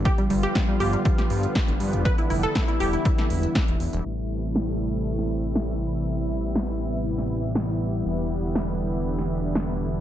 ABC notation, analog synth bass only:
X:1
M:4/4
L:1/16
Q:1/4=120
K:Am
V:1 name="Analog synth bass" clef=bass
z2 G,,, z3 G,,, z3 G,, z2 G,,, G,, E,,, | z2 F,,, z3 E,,, z3 E,,, z2 E,,, E,,, E,,, | A,,,16- | A,,,16 |
E,,,16 |]